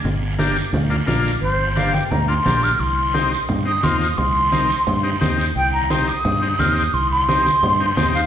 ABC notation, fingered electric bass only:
X:1
M:4/4
L:1/8
Q:1/4=174
K:Cm
V:1 name="Fingered electric bass" clef=bass
G,,,4 D,,2 B,,,2 | G,,,4 D,,2 B,,,2 | C,,4 G,,2 E,,2 | C,,4 G,,2 E,,2 |
C,,4 G,,2 E,,2 | C,,4 G,,2 E,,2 |]